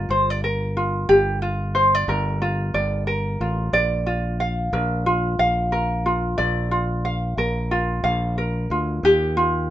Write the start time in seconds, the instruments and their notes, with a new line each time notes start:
Already playing: ukulele F4 A#4 D5
0.09 fingered electric bass G1, ukulele C5
0.30 ukulele D5
0.44 ukulele A#4
0.77 ukulele F4
1.09 fingered electric bass G1, ukulele G4
1.42 ukulele F4
1.75 ukulele C5
1.95 ukulele D5
2.08 fingered electric bass G1, ukulele A#4
2.42 ukulele F4
2.74 fingered electric bass G1, ukulele D5
3.07 ukulele A#4
3.40 fingered electric bass A1, ukulele F4
3.73 fingered electric bass A#1, ukulele D5
4.06 ukulele F4
4.40 ukulele F5
4.73 fingered electric bass A#1, ukulele A#4
5.06 ukulele F4
5.39 fingered electric bass A#1, ukulele F5
5.72 ukulele A#4
6.06 ukulele F4
6.38 fingered electric bass A#1, ukulele D5
6.71 ukulele F4
7.05 ukulele F5
7.37 fingered electric bass A#1, ukulele A#4
7.71 ukulele F4
8.03 fingered electric bass A#1, ukulele F5
8.38 ukulele A#4
8.70 fingered electric bass D2, ukulele F4
9.03 fingered electric bass D#2, ukulele G4
9.37 ukulele F4